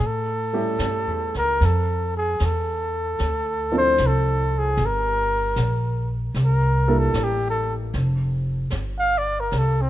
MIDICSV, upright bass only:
0, 0, Header, 1, 2, 480
1, 0, Start_track
1, 0, Key_signature, -1, "major"
1, 0, Tempo, 800000
1, 959, Time_signature, 4, 2, 24, 8
1, 2396, Tempo, 788436
1, 5991, End_track
2, 0, Start_track
2, 0, Title_t, "Upright bass"
2, 0, Program_c, 0, 32
2, 0, Note_on_c, 0, 45, 67
2, 463, Note_off_c, 0, 45, 0
2, 475, Note_on_c, 0, 43, 71
2, 642, Note_off_c, 0, 43, 0
2, 642, Note_on_c, 0, 40, 47
2, 800, Note_off_c, 0, 40, 0
2, 808, Note_on_c, 0, 37, 58
2, 953, Note_off_c, 0, 37, 0
2, 965, Note_on_c, 0, 41, 77
2, 1427, Note_off_c, 0, 41, 0
2, 1442, Note_on_c, 0, 40, 70
2, 1906, Note_off_c, 0, 40, 0
2, 1920, Note_on_c, 0, 38, 73
2, 2382, Note_off_c, 0, 38, 0
2, 2397, Note_on_c, 0, 36, 72
2, 2863, Note_off_c, 0, 36, 0
2, 2871, Note_on_c, 0, 31, 82
2, 3338, Note_off_c, 0, 31, 0
2, 3352, Note_on_c, 0, 34, 75
2, 3817, Note_off_c, 0, 34, 0
2, 3828, Note_on_c, 0, 36, 82
2, 4297, Note_off_c, 0, 36, 0
2, 4310, Note_on_c, 0, 33, 84
2, 4777, Note_off_c, 0, 33, 0
2, 4798, Note_on_c, 0, 29, 83
2, 5260, Note_off_c, 0, 29, 0
2, 5274, Note_on_c, 0, 31, 71
2, 5740, Note_off_c, 0, 31, 0
2, 5761, Note_on_c, 0, 36, 76
2, 5991, Note_off_c, 0, 36, 0
2, 5991, End_track
0, 0, End_of_file